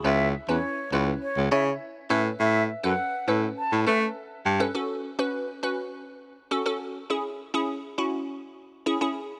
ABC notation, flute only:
X:1
M:4/4
L:1/16
Q:1/4=102
K:F#m
V:1 name="Flute"
e2 z c3 z2 c2 e z3 e z | e2 z f3 z2 a2 e z4 z | z16 | z16 |]